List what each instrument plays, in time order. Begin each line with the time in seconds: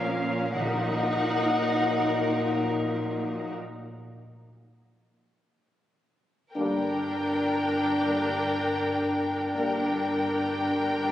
Already playing: double bass section A#1, trombone section A#2 F3, cello section A#2, french horn section A#3 C#4, viola section C#4, violin section A#4 F5
0.54 double bass section A#1, cello section A#2, timpani A#2, trombone section A#2 F#3, french horn section A#3 D#4, viola section D#4, violin section A#4 F#5
6.54 double bass section G1, cello section G2, trombone section D3 G3, french horn section A#3 D4, viola section D4, violin section A#4 G5
8.04 trombone section D3 G3, french horn section A#3 D4
9.54 double bass section G1, cello section G2, trombone section D3 G3, french horn section A#3 D4, viola section D4, violin section A#4 G5
11.04 trombone section D3 G3, french horn section A#3 D4